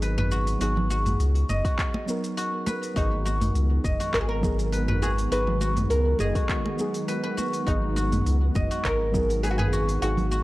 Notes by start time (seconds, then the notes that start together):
Already playing: G#1 F#3 B3 D#4 F#4 G#4 D#5
0.02 B4, open hi-hat, shaker
0.18 B4, mid tom, muted conga
0.32 F#4, shaker
0.47 open hi-hat, shaker
0.59 G#1 F#3 B3 D#4 F#4, open hi-hat, shaker
0.63 G#4
0.77 high conga, low conga
0.90 F#4, muted conga, shaker
1.06 mid tom, open hi-hat, high conga, shaker
1.20 C#2, open hi-hat, shaker
1.35 open hi-hat
1.49 F#1 D#5, mid tom, muted conga, shaker
1.65 F#4, kick, open hi-hat, shaker
1.79 kick, clap, open hi-hat, shaker
1.94 muted conga
2.06 F#3 B3 D#4, high conga, shaker
2.10 A#4
2.24 open hi-hat, shaker
2.37 F#4, open hi-hat, shaker
2.66 B4, muted conga, high conga, shaker
2.83 open hi-hat, shaker
2.94 G#1 D#3 F#3 G#3 B3 D#4 F#4, kick, open hi-hat, shaker
2.98 G#4
3.13 high conga
3.25 F#4, muted conga, shaker
3.41 mid tom, open hi-hat, high conga, shaker
3.55 C#2, open hi-hat, shaker
3.84 F#1 D#5, kick, mid tom, muted conga, shaker
4.00 F#4, open hi-hat, shaker
4.14 G#1 A#4, kick, clap, open hi-hat, shaker
4.21 G#4
4.29 A#4
4.41 F#3 B3 D#4 G#4, kick, low conga, shaker
4.59 open hi-hat, shaker
4.72 B4, open hi-hat, shaker
4.88 B4, mid tom, muted conga
5.02 F#4 G#4, shaker
5.18 open hi-hat, shaker
5.30 G#1 F#3 B3 D#4 F#4 G#4 B4, open hi-hat, shaker
5.47 high conga, low conga
5.61 F#4, muted conga, shaker
5.77 mid tom, open hi-hat, high conga, shaker
5.90 C#2 A#4, open hi-hat, shaker
6.19 F#1 G#4 D#5, mid tom, muted conga, shaker
6.35 F#4, kick, open hi-hat, shaker
6.49 kick, clap, open hi-hat, shaker
6.66 muted conga
6.77 F#3 B3 D#4 G#4, high conga, shaker
6.94 open hi-hat, shaker
7.08 B4, open hi-hat, shaker
7.23 B4
7.37 F#4, muted conga, high conga, shaker
7.53 open hi-hat, shaker
7.64 G#1 F#3 B3 D#4 F#4, kick, open hi-hat, shaker
7.68 G#4
7.82 high conga
7.96 F#4, muted conga, shaker
8.12 mid tom, open hi-hat, high conga, shaker
8.26 C#2, open hi-hat, shaker
8.55 F#1 D#5, kick, mid tom, muted conga, shaker
8.70 F#4, open hi-hat, shaker
8.85 G#1 A#4, kick, clap, open hi-hat, shaker
9.12 F#3 B3 D#4, kick, low conga, shaker
9.16 G#4
9.30 open hi-hat, shaker
9.43 G#4 B4, open hi-hat, shaker
9.51 F#4
9.58 G#4 B4, mid tom, muted conga
9.73 F#4, shaker
9.89 open hi-hat, shaker
10.00 G#1 F#3 B3 D#4 F#4, open hi-hat, shaker
10.04 G#4
10.18 open hi-hat, high conga, low conga
10.32 F#4, muted conga, shaker